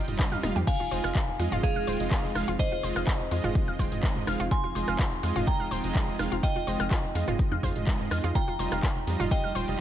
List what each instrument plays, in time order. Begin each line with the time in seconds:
Already playing: analog synth pad G3 D#4 F4, synth bell G5 A#5
0.08 analog synth bass F1, supersaw synth G3 F4 D#5, closed hi-hat, mid tom, shaker
0.19 kick, clap, closed hi-hat, high tom, high conga, shaker
0.32 analog synth bass F2, synth arpeggio sound F5, mid tom, high tom, shaker
0.43 analog synth bass D#1, supersaw synth G3 F4 F5, synth arpeggio sound D#4, cross-stick, open hi-hat, mid tom, high conga, shaker
0.56 analog synth bass F2, synth arpeggio sound G4, closed hi-hat, mid tom, shaker
0.67 analog synth pad F3 C4 D#4 F4 G#4, synth arpeggio sound F4, synth bell F5 G#5, kick, closed hi-hat, crash, shaker
0.80 analog synth bass F1, synth arpeggio sound F4, shaker
0.91 analog synth bass F1, supersaw synth G#3 F4 D#5, synth arpeggio sound C5, open hi-hat, shaker
1.04 analog synth bass F1, synth arpeggio sound F5, cross-stick, closed hi-hat, shaker
1.15 synth arpeggio sound F4, kick, clap, closed hi-hat, shaker
1.28 analog synth bass F1, shaker
1.39 analog synth bass F2, supersaw synth G#3 F4 D#5, synth arpeggio sound F4, open hi-hat, shaker
1.52 analog synth bass F1, synth arpeggio sound F4, closed hi-hat, mid tom, shaker
1.63 synth bell G#4 F5, kick, closed hi-hat, shaker
1.76 analog synth bass F1, synth arpeggio sound F5, shaker
1.87 analog synth bass D#1, supersaw synth G#3 F4 G5, synth arpeggio sound C5, open hi-hat, shaker
2.00 analog synth bass F1, supersaw synth G#3 F4 D#5, closed hi-hat, shaker
2.11 kick, clap, closed hi-hat, high conga, shaker
2.24 analog synth bass F1, shaker
2.35 analog synth bass F1, supersaw synth G#3 F4 F5, synth arpeggio sound F5, cross-stick, open hi-hat, high conga, shaker
2.48 analog synth bass F1, synth arpeggio sound F4, closed hi-hat, shaker
2.59 synth arpeggio sound F4, synth bell C5 D#5, kick, closed hi-hat, shaker
2.72 analog synth bass F1, synth arpeggio sound F4, shaker
2.83 analog synth bass F1, supersaw synth G#3 F4 D#5, synth arpeggio sound C5, open hi-hat, shaker
2.96 analog synth bass F1, synth arpeggio sound F5, cross-stick, closed hi-hat, shaker
3.07 synth arpeggio sound F4, kick, clap, closed hi-hat, shaker
3.20 analog synth bass F1, shaker
3.31 analog synth bass F2, supersaw synth G#3 F4 D#5, synth arpeggio sound F4, open hi-hat, shaker
3.44 analog synth bass F1, synth arpeggio sound F4, closed hi-hat, mid tom, shaker
3.55 kick, closed hi-hat, shaker
3.68 analog synth bass F1, synth arpeggio sound F5, shaker
3.79 analog synth bass D#1, supersaw synth G#3 F4 G5, synth arpeggio sound C5, kick, open hi-hat, shaker
3.92 analog synth bass F1, supersaw synth G#3 F4 D#5, closed hi-hat, mid tom, shaker
4.03 kick, clap, closed hi-hat, high conga, shaker
4.16 analog synth bass F1, mid tom, shaker
4.27 analog synth bass F1, supersaw synth G#3 F4 F5, synth arpeggio sound F5, cross-stick, open hi-hat, high conga, shaker
4.40 analog synth bass F1, synth arpeggio sound F4, closed hi-hat, shaker
4.51 synth arpeggio sound F4, synth bell G#5 C6, kick, closed hi-hat, shaker
4.64 analog synth bass F1, synth arpeggio sound F4, shaker
4.75 analog synth bass F1, supersaw synth G#3 F4 D#5, synth arpeggio sound C5, open hi-hat, shaker
4.88 analog synth bass F1, synth arpeggio sound F5, cross-stick, closed hi-hat, shaker
4.99 synth arpeggio sound F4, kick, clap, closed hi-hat, shaker
5.12 analog synth bass F1, shaker
5.23 analog synth bass F2, supersaw synth G#3 F4 D#5, synth arpeggio sound F4, open hi-hat, shaker
5.36 analog synth bass F1, synth arpeggio sound F4, closed hi-hat, mid tom, shaker
5.47 synth bell G5 A#5, kick, closed hi-hat, shaker
5.60 analog synth bass F1, synth arpeggio sound F5, shaker
5.71 analog synth bass D#1, supersaw synth G#3 F4 G5, synth arpeggio sound C5, open hi-hat, shaker
5.84 analog synth bass F1, supersaw synth G#3 F4 D#5, closed hi-hat, shaker
5.95 kick, clap, closed hi-hat, high conga, shaker
6.08 analog synth bass F1, shaker
6.19 analog synth bass F1, supersaw synth G#3 F4 F5, synth arpeggio sound F5, cross-stick, open hi-hat, high conga, shaker
6.32 analog synth bass F1, synth arpeggio sound F4, closed hi-hat, shaker
6.43 synth arpeggio sound F4, synth bell D#5 G5, kick, closed hi-hat, shaker
6.56 analog synth bass F1, synth arpeggio sound F4, shaker
6.67 analog synth bass F1, supersaw synth G#3 F4 D#5, synth arpeggio sound C5, open hi-hat, shaker
6.80 analog synth bass F1, synth arpeggio sound F5, cross-stick, closed hi-hat, shaker
6.91 synth arpeggio sound F4, kick, clap, closed hi-hat, shaker
7.04 analog synth bass F1, shaker
7.15 analog synth bass F2, supersaw synth G#3 F4 D#5, synth arpeggio sound F4, open hi-hat, shaker
7.28 analog synth bass F1, synth arpeggio sound F4, cross-stick, closed hi-hat, mid tom, shaker
7.39 kick, closed hi-hat, shaker
7.52 analog synth bass F2, synth arpeggio sound F5, high conga, shaker
7.63 analog synth bass F2, supersaw synth G#3 F4 F5, synth arpeggio sound C5, kick, open hi-hat, shaker
7.76 analog synth bass F1, supersaw synth G#3 F4 D#5, closed hi-hat, mid tom, shaker
7.87 kick, clap, closed hi-hat, high conga, shaker
8.00 analog synth bass F1, mid tom, shaker
8.11 analog synth bass F2, supersaw synth G#3 F4 D#5, synth arpeggio sound F5, cross-stick, open hi-hat, high conga, shaker
8.24 analog synth bass F2, synth arpeggio sound F4, closed hi-hat, shaker
8.35 analog synth pad F3 G3, synth arpeggio sound F4, synth bell G5 A#5, kick, closed hi-hat, shaker
8.48 analog synth bass F1, synth arpeggio sound F4, shaker
8.59 analog synth bass F1, supersaw synth G3 F4 D#5, synth arpeggio sound C5, open hi-hat, shaker
8.72 analog synth bass F1, synth arpeggio sound F5, cross-stick, closed hi-hat, shaker
8.83 synth arpeggio sound F4, kick, clap, closed hi-hat, shaker
8.96 analog synth bass F1, shaker
9.07 analog synth bass F2, supersaw synth G3 F4 D#5, open hi-hat, shaker
9.20 analog synth bass F1, synth arpeggio sound F4, closed hi-hat, mid tom, shaker
9.31 synth arpeggio sound F4, synth bell D#5 G5, kick, closed hi-hat, shaker
9.44 analog synth bass F1, synth arpeggio sound F5, shaker
9.55 analog synth bass D#1, supersaw synth G3 F4 G5, synth arpeggio sound C5, open hi-hat, shaker
9.68 analog synth bass F1, supersaw synth G3 F4 D#5, closed hi-hat, shaker